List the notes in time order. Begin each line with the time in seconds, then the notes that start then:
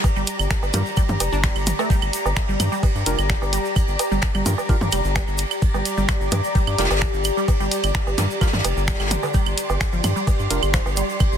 Already playing: G4 D5 A#5
0.04 kick, ride, low woodblock, shaker
0.16 G1 G3, ride, shaker
0.27 closed hi-hat, ride, shaker
0.39 G1, ride, claves, shaker
0.50 finger snap, kick, snare, ride, shaker
0.63 G1, low woodblock, shaker
0.73 G2 G3 D4 F4 G4 A#4, closed hi-hat, mid tom, shaker
0.86 shaker
0.97 G3, kick, ride, claves, shaker
1.09 G2, mid tom, ride, shaker
1.20 F1, closed hi-hat, ride, low woodblock, shaker
1.32 G1 D4, shaker
1.44 G3, finger snap, kick, snare, closed hi-hat, ride, shaker
1.56 G1, claves, shaker
1.67 closed hi-hat, mid tom, ride, shaker
1.78 A3, ride, low woodblock, shaker
1.90 G3, kick, ride, shaker
2.02 G1, claves, shaker
2.13 closed hi-hat, ride, shaker
2.25 G1, low woodblock, shaker
2.36 finger snap, kick, snare, ride, shaker
2.49 G1 G3, shaker
2.59 G2, snare, closed hi-hat, mid tom, ride, claves, shaker
2.72 G3, shaker
2.83 kick, ride, low woodblock, shaker
2.95 G2, shaker
3.06 F1 D4 F4 G4 A#4, closed hi-hat, ride, shaker
3.18 G1, claves, shaker
3.29 G3, finger snap, kick, snare, closed hi-hat, shaker
3.42 G1, low woodblock, shaker
3.53 G3, closed hi-hat, ride, shaker
3.64 ride, shaker
3.76 kick, ride, claves, shaker
3.88 G1, ride, shaker
3.99 closed hi-hat, ride, low woodblock, shaker
4.11 G1 G3, ride, shaker
4.22 finger snap, kick, snare, ride, shaker
4.35 G1 G3, claves, shaker
4.46 G2 D4 F4 G4 A#4, closed hi-hat, mid tom, ride, shaker
4.58 low woodblock, shaker
4.69 D4 F4 G4 A#4, kick, ride, shaker
4.81 G2, mid tom, ride, shaker
4.92 F1 G3, closed hi-hat, ride, claves, shaker
5.04 G1, shaker
5.15 G3, finger snap, kick, snare, closed hi-hat, ride, low woodblock, shaker
5.28 G1, shaker
5.38 closed hi-hat, ride, shaker
5.51 ride, claves, shaker
5.62 kick, ride, shaker
5.74 G1 G3, low woodblock, shaker
5.85 closed hi-hat, ride, shaker
5.97 G1 G3, shaker
6.09 finger snap, kick, snare, claves, shaker
6.21 G1, shaker
6.32 G2, closed hi-hat, mid tom, ride, low woodblock, shaker
6.44 shaker
6.55 G3, kick, ride, shaker
6.67 G2, claves, shaker
6.78 F1 G3 D4 F4 G4 A#4, snare, closed hi-hat, ride, shaker
6.85 snare, ride
6.90 G1, snare, ride, low woodblock, shaker
6.96 snare, ride
7.01 finger snap, kick, snare, closed hi-hat, shaker
7.14 G1, shaker
7.24 closed hi-hat, ride, claves, shaker
7.37 G3, ride, shaker
7.48 kick, ride, low woodblock, shaker
7.60 G1 G3, ride, shaker
7.71 closed hi-hat, ride, shaker
7.84 G1, closed hi-hat, ride, claves, shaker
7.95 finger snap, kick, snare, shaker
8.07 G1, low woodblock, shaker
8.17 G2 G3 D4 F4 G4 A#4, snare, closed hi-hat, mid tom, ride, shaker
8.30 shaker
8.41 G3 D4 F4 G4 A#4, kick, snare, ride, claves, shaker
8.47 snare, ride
8.53 G2 C6, snare, mid tom, ride, shaker
8.59 snare, ride
8.64 F1, closed hi-hat, ride, low woodblock, shaker
8.77 G1, shaker
8.88 G3, finger snap, kick, snare, closed hi-hat, ride, shaker
8.93 snare, ride
9.00 G1 G3, snare, ride, claves, shaker
9.05 snare, ride
9.11 closed hi-hat, mid tom, ride, shaker
9.23 D3, ride, low woodblock, shaker
9.34 G3, kick, ride, shaker
9.46 G1, claves, shaker
9.58 closed hi-hat, ride, shaker
9.70 G1, low woodblock, shaker
9.80 finger snap, kick, snare, ride, shaker
9.93 G1 F3, shaker
10.04 G2, snare, closed hi-hat, mid tom, ride, claves, shaker
10.16 G3, shaker
10.27 kick, ride, low woodblock, shaker
10.39 G2, shaker
10.50 F1 D4 F4 G4 A#4, closed hi-hat, ride, shaker
10.63 G1, claves, shaker
10.73 F3, finger snap, kick, snare, closed hi-hat, ride, shaker
10.86 G1, low woodblock, shaker
10.97 G3, closed hi-hat, ride, shaker
11.09 ride, shaker
11.20 kick, ride, claves, shaker
11.32 G1, ride, shaker